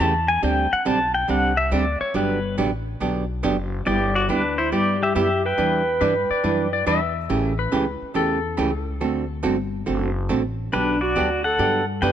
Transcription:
0.00 upright bass E2, hollow-body jazz guitar C#3 E3 A3 C#4 G4, pedal steel guitar A5
0.28 pedal steel guitar G#5
0.42 upright bass D2, hollow-body jazz guitar D3 G3 C4 D4 G4, pedal steel guitar G5
0.73 pedal steel guitar F#5, muted upright bass stroke
0.85 upright bass B1, hollow-body jazz guitar D3 G3 C4 D4 G4, pedal steel guitar A5
1.14 pedal steel guitar G5
1.28 upright bass C2, hollow-body jazz guitar D3 G3 C4 D4 G4, pedal steel guitar F#5
1.57 pedal steel guitar E5
1.71 upright bass D2, hollow-body jazz guitar D3 G3 C4 D4 G4, pedal steel guitar D5
2.01 pedal steel guitar C#5, muted upright bass stroke
2.14 upright bass G1, hollow-body jazz guitar D3 F#3 B3 D4 G4, pedal steel guitar B4
2.58 upright bass A1, hollow-body jazz guitar D3 F#3 B3 D4 G4
3.00 upright bass B1, hollow-body jazz guitar D3 F#3 B3 D4 G4
3.43 upright bass F#1, hollow-body jazz guitar D3 F#3 B3 D4 G4
3.86 upright bass G1, hollow-body jazz guitar G3 B3 E4 G4, clarinet G4, pedal steel guitar G4 D5
4.15 clarinet F#4, pedal steel guitar F#4 D5
4.29 upright bass D2, hollow-body jazz guitar G3 B3 E4 G4, pedal steel guitar D4 B4, clarinet D4
4.58 pedal steel guitar E4 C5, clarinet E4
4.72 upright bass G2, hollow-body jazz guitar G3 B3 E4 G4, pedal steel guitar G4 D5, clarinet G4
5.02 clarinet G4, pedal steel guitar G4 E5
5.15 upright bass F#2, hollow-body jazz guitar G3 B3 E4 G4, clarinet G4, pedal steel guitar G4 E5
5.45 clarinet B4, pedal steel guitar B4 G5
5.58 upright bass E2, hollow-body jazz guitar E3 G3 D4 E4 B4
6.01 upright bass G2, hollow-body jazz guitar E3 G3 D4 E4 B4, electric slide guitar B4
6.30 electric slide guitar D5, muted upright bass stroke
6.44 upright bass F#2, hollow-body jazz guitar E3 G3 D4 E4 B4
6.73 electric slide guitar D5
6.86 upright bass E2, hollow-body jazz guitar E3 G3 D4 E4 B4, electric slide guitar E5
7.29 upright bass A1, hollow-body jazz guitar C#3 E3 A3 C#4 G4
7.59 electric slide guitar B4
7.72 upright bass C#2, hollow-body jazz guitar C#3 E3 A3 C#4 G4
8.02 muted upright bass stroke
8.14 upright bass E2, hollow-body jazz guitar C#3 E3 A3 C#4 G4, electric slide guitar A4
8.57 upright bass C#2, hollow-body jazz guitar C#3 E3 A3 C#4 G4
9.01 upright bass D2, hollow-body jazz guitar D3 A3 C4 F#4 A4
9.43 upright bass G1, hollow-body jazz guitar D3 A3 C4 F#4 A4
9.86 upright bass F#1, hollow-body jazz guitar D3 A3 C4 F#4 A4
10.29 upright bass A1, hollow-body jazz guitar D3 A3 C4 F#4 A4
10.72 upright bass B1, hollow-body jazz guitar D3 F#3 B3 D4 G4, clarinet D4, pedal steel guitar D4 B4
11.01 pedal steel guitar F#4 D5, clarinet F#4
11.16 upright bass D2, hollow-body jazz guitar D3 F#3 B3 D4 G4
11.44 clarinet A4, pedal steel guitar A4 F#5
11.58 upright bass G2, hollow-body jazz guitar D3 F#3 B3 D4 G4
12.02 upright bass F#2, hollow-body jazz guitar D3 F#3 B3 D4 G4, clarinet B4, pedal steel guitar B4 G5

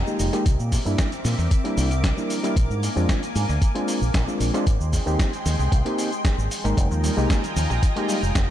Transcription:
Already playing: analog synth pad F4 D#5 G5 G#5 A#5
0.06 reed electric piano G#3 A#3 D#4 G4, cabasa
0.19 fingered electric bass F1, open hi-hat, cabasa
0.33 reed electric piano G#3 A#3 D#4 G4, closed hi-hat, cabasa
0.46 fingered electric bass C2, analog synth pad C4 A#4 E5 D6, kick, closed hi-hat, cabasa
0.59 fingered electric bass A#2, cabasa
0.72 kick, open hi-hat, cabasa
0.85 fingered electric bass G2, reed electric piano G3 A#3 D4 E4, cabasa
0.98 kick, snare, closed hi-hat, cabasa
1.12 closed hi-hat, cabasa
1.25 fingered electric bass A#2, snare, open hi-hat, cabasa
1.38 fingered electric bass E2, cabasa
1.51 kick, closed hi-hat, cabasa
1.64 reed electric piano G3 A#3 D4 E4, closed hi-hat
1.77 fingered electric bass C2, open hi-hat, cabasa
1.91 closed hi-hat, cabasa
2.04 kick, snare, closed hi-hat, cabasa
2.17 reed electric piano G3 A#3 D4 E4, cabasa
2.30 open hi-hat, cabasa
2.43 reed electric piano G3 A#3 D4 E4, closed hi-hat, cabasa
2.56 fingered electric bass A#1, analog synth pad A#3 G#5, kick, closed hi-hat, cabasa
2.70 fingered electric bass G#2, cabasa
2.83 open hi-hat, cabasa
2.96 fingered electric bass F2, reed electric piano G#3 C4 D4 F4, cabasa
3.09 kick, snare, closed hi-hat, cabasa
3.23 closed hi-hat, cabasa
3.35 fingered electric bass G#2, open hi-hat, cabasa
3.49 fingered electric bass D2, cabasa
3.62 kick, closed hi-hat, cabasa
3.75 reed electric piano G#3 C4 D4 F4, closed hi-hat
3.88 open hi-hat, cabasa
4.01 fingered electric bass A#1, cabasa
4.14 fingered electric bass A#1, kick, snare, closed hi-hat, cabasa
4.27 reed electric piano G#3 C4 D4 F4, cabasa
4.40 fingered electric bass A#1, open hi-hat, cabasa
4.54 reed electric piano G#3 C4 D4 F4, closed hi-hat, cabasa
4.66 fingered electric bass G#1, analog synth pad G#3 G#4 G5 C6, kick, closed hi-hat, cabasa
4.80 fingered electric bass D#2, cabasa
4.93 kick, open hi-hat, cabasa
5.06 fingered electric bass D#2, reed electric piano A#3 C4 D#4 G4, cabasa
5.19 kick, snare, closed hi-hat, cabasa
5.33 closed hi-hat, cabasa
5.45 fingered electric bass D#2, snare, open hi-hat, cabasa
5.59 fingered electric bass C2, cabasa
5.72 fingered electric bass C2, kick, closed hi-hat, cabasa
5.85 reed electric piano A#3 C4 D#4 G4, closed hi-hat
5.99 open hi-hat, cabasa
6.12 closed hi-hat, cabasa
6.25 kick, snare, closed hi-hat, cabasa
6.38 fingered electric bass G#1, cabasa
6.51 open hi-hat, cabasa
6.64 fingered electric bass G#1, reed electric piano G#3 A#3 D#4 A#4, closed hi-hat, cabasa
6.77 fingered electric bass F1, synth arpeggio sound D#3, analog synth pad F4 D#5 G5 G#5 A#5, kick, closed hi-hat, cabasa
6.91 fingered electric bass D#2, synth arpeggio sound F3, cabasa
7.04 synth arpeggio sound G3, open hi-hat, cabasa
7.17 fingered electric bass C2, reed electric piano G#3 A#3 D#4 G4, synth arpeggio sound G#3, cabasa
7.30 synth arpeggio sound A#3, kick, snare, closed hi-hat, cabasa
7.44 synth arpeggio sound D#3, closed hi-hat, cabasa
7.56 fingered electric bass D#2, synth arpeggio sound F3, open hi-hat, cabasa
7.70 fingered electric bass A#1, synth arpeggio sound G3, cabasa
7.83 synth arpeggio sound D#3, kick, closed hi-hat, cabasa
7.96 synth arpeggio sound F3, reed electric piano G#3 A#3 D#4 G4, closed hi-hat
8.09 synth arpeggio sound G3, open hi-hat, cabasa
8.23 fingered electric bass F1, synth arpeggio sound G#3, cabasa
8.35 fingered electric bass F1, synth arpeggio sound A#3, kick, snare, closed hi-hat, cabasa

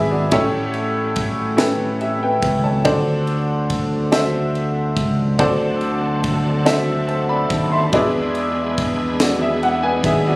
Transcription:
Already playing: fingered electric bass G#1, upright piano D4 E4 G#4 B4 D5 E5 G#5 B5
0.11 upright piano F#4 D5
0.31 fingered electric bass A1, upright piano A2 C#4 E4 G4 A4 C#5, kick, ride
0.74 ride
1.16 kick, ride
1.57 upright piano C#4 E4 G4 A4 B4, snare, ride
2.01 upright piano G4 E5, ride
2.23 upright piano B4 G5
2.42 fingered electric bass C#2, kick, ride
2.64 upright piano C#5 A5
2.85 fingered electric bass D2, upright piano D3 D4 F4 A4 C5 D5, kick, ride
2.91 upright piano F#4
3.27 ride
3.70 kick, ride
4.12 upright piano D4 F#4 A4 C5 E5, snare, ride
4.55 ride
4.96 fingered electric bass C#2, kick, ride
5.39 fingered electric bass D2, upright piano D3 D4 F#4 A4 C5 D5, tonewheel organ F#3 A3 C4 D4 A4, kick, ride
5.81 ride
6.24 kick, ride
6.66 upright piano D4 F#4 A4 C5 E5, snare, ride
7.08 upright piano C5 A5, ride
7.29 upright piano D5 B5
7.50 fingered electric bass D#2, kick, ride
7.72 upright piano E5 C6
7.93 fingered electric bass E2, upright piano E3 D4 E4 G#4 B4 D5, tonewheel organ G#3 B3 D4 E4 G#4, kick, ride
8.35 ride
8.78 kick, ride
9.20 upright piano F#4 D5, snare, ride
9.42 upright piano G#4 E5
9.63 upright piano F#5, ride
9.83 upright piano B4 G#5
10.04 fingered electric bass D#2, upright piano G#4 E5, kick, ride
10.27 upright piano F#4 D5

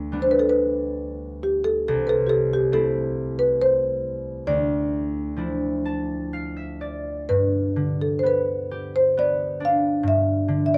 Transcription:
Already playing: harp D2 A3 D4, marimba B4
0.12 harp G3 B3 D4
0.22 marimba C5
0.31 marimba B4
0.39 marimba A4
0.49 marimba B4
1.43 marimba G4
1.64 marimba A4
1.88 harp C2, marimba A4
2.07 marimba A4 B4
2.27 marimba G4 A4
2.53 marimba G4
2.72 harp A3 C4 E4, marimba A4
3.39 marimba B4
3.62 marimba C5
4.47 harp D2, marimba D5
5.36 harp F3 D4 E4
5.85 harp A5
6.33 harp F5
6.57 harp E5
6.81 harp D5
7.29 harp G2, marimba B4
7.76 harp D3
8.01 marimba A4
8.19 harp B3, marimba C5
8.27 marimba B4
8.71 harp G4
8.96 marimba C5
9.17 harp B3, marimba D5
9.60 harp D4
9.65 marimba F5
10.03 harp G2
10.08 marimba E5
10.48 harp D3
10.66 marimba E5
10.74 marimba D5

